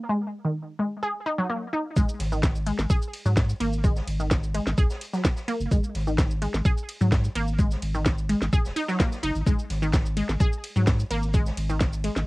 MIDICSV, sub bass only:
0, 0, Header, 1, 2, 480
1, 0, Start_track
1, 0, Tempo, 468750
1, 92, Time_signature, 4, 2, 24, 8
1, 12563, End_track
2, 0, Start_track
2, 0, Title_t, "Sub bass"
2, 0, Program_c, 0, 38
2, 2012, Note_on_c, 0, 32, 102
2, 2092, Note_off_c, 0, 32, 0
2, 2251, Note_on_c, 0, 32, 94
2, 2784, Note_off_c, 0, 32, 0
2, 2857, Note_on_c, 0, 32, 88
2, 2930, Note_off_c, 0, 32, 0
2, 3336, Note_on_c, 0, 44, 97
2, 3624, Note_off_c, 0, 44, 0
2, 3691, Note_on_c, 0, 32, 89
2, 4105, Note_off_c, 0, 32, 0
2, 4171, Note_on_c, 0, 32, 96
2, 4704, Note_off_c, 0, 32, 0
2, 4777, Note_on_c, 0, 32, 91
2, 4850, Note_off_c, 0, 32, 0
2, 4892, Note_on_c, 0, 35, 87
2, 4972, Note_off_c, 0, 35, 0
2, 5737, Note_on_c, 0, 30, 93
2, 5810, Note_off_c, 0, 30, 0
2, 5852, Note_on_c, 0, 32, 97
2, 5932, Note_off_c, 0, 32, 0
2, 6093, Note_on_c, 0, 32, 94
2, 6625, Note_off_c, 0, 32, 0
2, 6699, Note_on_c, 0, 32, 92
2, 6771, Note_off_c, 0, 32, 0
2, 7178, Note_on_c, 0, 44, 95
2, 7466, Note_off_c, 0, 44, 0
2, 7533, Note_on_c, 0, 32, 96
2, 7946, Note_off_c, 0, 32, 0
2, 8013, Note_on_c, 0, 32, 92
2, 8545, Note_off_c, 0, 32, 0
2, 8619, Note_on_c, 0, 32, 90
2, 8691, Note_off_c, 0, 32, 0
2, 8858, Note_on_c, 0, 27, 84
2, 8931, Note_off_c, 0, 27, 0
2, 9453, Note_on_c, 0, 30, 93
2, 9532, Note_off_c, 0, 30, 0
2, 9578, Note_on_c, 0, 32, 89
2, 9650, Note_off_c, 0, 32, 0
2, 9692, Note_on_c, 0, 32, 99
2, 9772, Note_off_c, 0, 32, 0
2, 9933, Note_on_c, 0, 32, 95
2, 10465, Note_off_c, 0, 32, 0
2, 10537, Note_on_c, 0, 32, 89
2, 10610, Note_off_c, 0, 32, 0
2, 11016, Note_on_c, 0, 44, 94
2, 11305, Note_off_c, 0, 44, 0
2, 11369, Note_on_c, 0, 32, 91
2, 11784, Note_off_c, 0, 32, 0
2, 11850, Note_on_c, 0, 32, 90
2, 12383, Note_off_c, 0, 32, 0
2, 12457, Note_on_c, 0, 32, 91
2, 12530, Note_off_c, 0, 32, 0
2, 12563, End_track
0, 0, End_of_file